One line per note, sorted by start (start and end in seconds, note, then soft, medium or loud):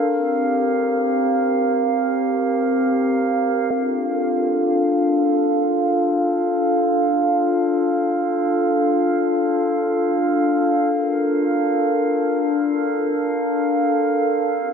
0.00 3.67 A#4 medium
0.10 3.67 C4 medium
0.10 3.67 G4 medium
0.10 3.67 F5 medium
3.71 10.89 D4 medium
3.71 10.89 F4 medium
3.71 10.89 A4 medium
3.71 10.89 F5 medium
10.92 14.50 D4 medium
10.92 14.50 A4 medium
10.92 14.73 A#4 medium
10.92 14.73 F5 medium
14.53 14.73 C4 medium
14.53 14.73 G4 medium